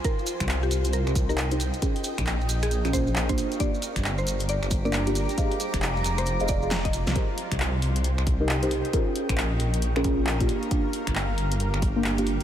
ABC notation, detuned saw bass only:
X:1
M:4/4
L:1/16
Q:"Swing 16ths" 1/4=135
K:Cm
V:1 name="Detuned saw bass" clef=bass
z3 C,,3 C,,3 C,,6 z | z3 B,,,3 B,,,3 B,,,4- B,,, z2 | z3 G,,,3 G,,,3 G,,,6 z | z3 F,,,3 F,,,3 F,,,6 C,, |
z3 C,,3 C,,3 C,,6 z | z3 B,,,3 B,,,3 B,,,4- B,,, z2 | z3 G,,,3 G,,,3 G,,,6 z |]